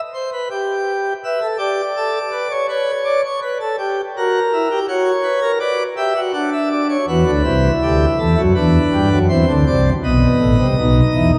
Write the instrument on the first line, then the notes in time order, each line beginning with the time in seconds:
pipe organ
0.14 C5
0.33 B4
0.50 G4
1.24 B4 E5
1.42 A4
1.58 G4 D5
1.97 A4
2.32 B4
2.51 C#5
2.68 B4 C#5
3.05 D5
3.24 C#5
3.42 B4
3.60 A4
3.78 G4
4.17 F#4 A#4
4.53 E4
4.71 G4
4.88 F#4 C#5
5.23 B4
5.42 A#4
5.60 B4 D5
5.97 G4 E5
6.16 F#4
6.33 D4 F#5
6.53 E5
6.71 D5
6.89 C#5
7.08 E2 E3 F#4 B4
7.26 D2 D3
7.44 C2 C3 E4
7.82 D2 D3 G4
8.18 E2 E3 A4
8.37 F#2 F#3
8.55 E2 E3 D4 B4
8.92 G2 G3
9.11 F#2 F#3
9.29 E2 E3 C4 C5
9.48 D2 D3
9.67 C2 C3 D5
10.03 B1 B2 B3 D#5
10.40 A1 A2
10.59 C2 C3
10.78 B1 B2 D#4
11.15 E2 E3
11.35 D#2 D#3